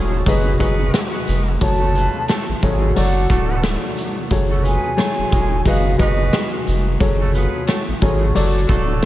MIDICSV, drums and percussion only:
0, 0, Header, 1, 2, 480
1, 0, Start_track
1, 0, Key_signature, 3, "minor"
1, 0, Tempo, 674157
1, 1148, Time_signature, 4, 2, 24, 8
1, 6446, End_track
2, 0, Start_track
2, 0, Title_t, "Drums"
2, 188, Note_on_c, 9, 36, 92
2, 191, Note_on_c, 9, 42, 90
2, 193, Note_on_c, 9, 83, 58
2, 259, Note_off_c, 9, 36, 0
2, 262, Note_off_c, 9, 42, 0
2, 264, Note_off_c, 9, 83, 0
2, 425, Note_on_c, 9, 42, 57
2, 425, Note_on_c, 9, 82, 56
2, 429, Note_on_c, 9, 36, 96
2, 429, Note_on_c, 9, 83, 80
2, 497, Note_off_c, 9, 42, 0
2, 497, Note_off_c, 9, 82, 0
2, 500, Note_off_c, 9, 36, 0
2, 501, Note_off_c, 9, 83, 0
2, 669, Note_on_c, 9, 38, 118
2, 670, Note_on_c, 9, 83, 51
2, 671, Note_on_c, 9, 42, 75
2, 675, Note_on_c, 9, 37, 93
2, 740, Note_off_c, 9, 38, 0
2, 741, Note_off_c, 9, 83, 0
2, 742, Note_off_c, 9, 42, 0
2, 747, Note_off_c, 9, 37, 0
2, 909, Note_on_c, 9, 42, 52
2, 909, Note_on_c, 9, 82, 55
2, 913, Note_on_c, 9, 83, 73
2, 980, Note_off_c, 9, 42, 0
2, 980, Note_off_c, 9, 82, 0
2, 984, Note_off_c, 9, 83, 0
2, 1147, Note_on_c, 9, 42, 90
2, 1148, Note_on_c, 9, 36, 108
2, 1151, Note_on_c, 9, 83, 51
2, 1218, Note_off_c, 9, 42, 0
2, 1220, Note_off_c, 9, 36, 0
2, 1222, Note_off_c, 9, 83, 0
2, 1381, Note_on_c, 9, 82, 55
2, 1391, Note_on_c, 9, 83, 71
2, 1452, Note_off_c, 9, 82, 0
2, 1462, Note_off_c, 9, 83, 0
2, 1625, Note_on_c, 9, 42, 76
2, 1629, Note_on_c, 9, 83, 60
2, 1634, Note_on_c, 9, 38, 114
2, 1640, Note_on_c, 9, 37, 91
2, 1697, Note_off_c, 9, 42, 0
2, 1700, Note_off_c, 9, 83, 0
2, 1705, Note_off_c, 9, 38, 0
2, 1711, Note_off_c, 9, 37, 0
2, 1863, Note_on_c, 9, 82, 51
2, 1869, Note_on_c, 9, 83, 66
2, 1871, Note_on_c, 9, 36, 93
2, 1934, Note_off_c, 9, 82, 0
2, 1940, Note_off_c, 9, 83, 0
2, 1942, Note_off_c, 9, 36, 0
2, 2110, Note_on_c, 9, 42, 88
2, 2112, Note_on_c, 9, 83, 58
2, 2181, Note_off_c, 9, 42, 0
2, 2183, Note_off_c, 9, 83, 0
2, 2345, Note_on_c, 9, 82, 57
2, 2349, Note_on_c, 9, 36, 100
2, 2349, Note_on_c, 9, 83, 80
2, 2416, Note_off_c, 9, 82, 0
2, 2420, Note_off_c, 9, 36, 0
2, 2420, Note_off_c, 9, 83, 0
2, 2589, Note_on_c, 9, 38, 115
2, 2589, Note_on_c, 9, 83, 52
2, 2590, Note_on_c, 9, 42, 76
2, 2595, Note_on_c, 9, 37, 93
2, 2660, Note_off_c, 9, 38, 0
2, 2661, Note_off_c, 9, 83, 0
2, 2662, Note_off_c, 9, 42, 0
2, 2666, Note_off_c, 9, 37, 0
2, 2828, Note_on_c, 9, 42, 53
2, 2828, Note_on_c, 9, 82, 54
2, 2833, Note_on_c, 9, 83, 80
2, 2899, Note_off_c, 9, 42, 0
2, 2899, Note_off_c, 9, 82, 0
2, 2904, Note_off_c, 9, 83, 0
2, 3067, Note_on_c, 9, 42, 91
2, 3068, Note_on_c, 9, 36, 113
2, 3069, Note_on_c, 9, 83, 51
2, 3138, Note_off_c, 9, 42, 0
2, 3139, Note_off_c, 9, 36, 0
2, 3141, Note_off_c, 9, 83, 0
2, 3302, Note_on_c, 9, 82, 54
2, 3311, Note_on_c, 9, 83, 70
2, 3373, Note_off_c, 9, 82, 0
2, 3382, Note_off_c, 9, 83, 0
2, 3546, Note_on_c, 9, 42, 73
2, 3549, Note_on_c, 9, 83, 56
2, 3554, Note_on_c, 9, 38, 116
2, 3561, Note_on_c, 9, 37, 93
2, 3617, Note_off_c, 9, 42, 0
2, 3620, Note_off_c, 9, 83, 0
2, 3625, Note_off_c, 9, 38, 0
2, 3632, Note_off_c, 9, 37, 0
2, 3784, Note_on_c, 9, 82, 51
2, 3788, Note_on_c, 9, 83, 70
2, 3791, Note_on_c, 9, 36, 92
2, 3855, Note_off_c, 9, 82, 0
2, 3859, Note_off_c, 9, 83, 0
2, 3862, Note_off_c, 9, 36, 0
2, 4027, Note_on_c, 9, 36, 90
2, 4030, Note_on_c, 9, 42, 89
2, 4031, Note_on_c, 9, 83, 59
2, 4098, Note_off_c, 9, 36, 0
2, 4101, Note_off_c, 9, 42, 0
2, 4102, Note_off_c, 9, 83, 0
2, 4265, Note_on_c, 9, 42, 58
2, 4265, Note_on_c, 9, 82, 56
2, 4268, Note_on_c, 9, 36, 99
2, 4269, Note_on_c, 9, 83, 77
2, 4337, Note_off_c, 9, 42, 0
2, 4337, Note_off_c, 9, 82, 0
2, 4340, Note_off_c, 9, 36, 0
2, 4341, Note_off_c, 9, 83, 0
2, 4507, Note_on_c, 9, 38, 118
2, 4508, Note_on_c, 9, 83, 51
2, 4509, Note_on_c, 9, 42, 76
2, 4514, Note_on_c, 9, 37, 94
2, 4579, Note_off_c, 9, 38, 0
2, 4579, Note_off_c, 9, 83, 0
2, 4580, Note_off_c, 9, 42, 0
2, 4585, Note_off_c, 9, 37, 0
2, 4748, Note_on_c, 9, 42, 53
2, 4748, Note_on_c, 9, 82, 52
2, 4752, Note_on_c, 9, 83, 75
2, 4819, Note_off_c, 9, 42, 0
2, 4819, Note_off_c, 9, 82, 0
2, 4823, Note_off_c, 9, 83, 0
2, 4986, Note_on_c, 9, 42, 87
2, 4987, Note_on_c, 9, 36, 112
2, 4991, Note_on_c, 9, 83, 48
2, 5057, Note_off_c, 9, 42, 0
2, 5059, Note_off_c, 9, 36, 0
2, 5062, Note_off_c, 9, 83, 0
2, 5221, Note_on_c, 9, 82, 56
2, 5231, Note_on_c, 9, 83, 70
2, 5292, Note_off_c, 9, 82, 0
2, 5303, Note_off_c, 9, 83, 0
2, 5464, Note_on_c, 9, 42, 76
2, 5468, Note_on_c, 9, 83, 61
2, 5472, Note_on_c, 9, 38, 113
2, 5479, Note_on_c, 9, 37, 89
2, 5536, Note_off_c, 9, 42, 0
2, 5539, Note_off_c, 9, 83, 0
2, 5544, Note_off_c, 9, 38, 0
2, 5550, Note_off_c, 9, 37, 0
2, 5702, Note_on_c, 9, 82, 51
2, 5708, Note_on_c, 9, 83, 68
2, 5711, Note_on_c, 9, 36, 93
2, 5774, Note_off_c, 9, 82, 0
2, 5779, Note_off_c, 9, 83, 0
2, 5782, Note_off_c, 9, 36, 0
2, 5949, Note_on_c, 9, 42, 86
2, 5949, Note_on_c, 9, 83, 59
2, 6020, Note_off_c, 9, 42, 0
2, 6021, Note_off_c, 9, 83, 0
2, 6184, Note_on_c, 9, 82, 57
2, 6186, Note_on_c, 9, 83, 82
2, 6187, Note_on_c, 9, 36, 98
2, 6255, Note_off_c, 9, 82, 0
2, 6258, Note_off_c, 9, 83, 0
2, 6259, Note_off_c, 9, 36, 0
2, 6446, End_track
0, 0, End_of_file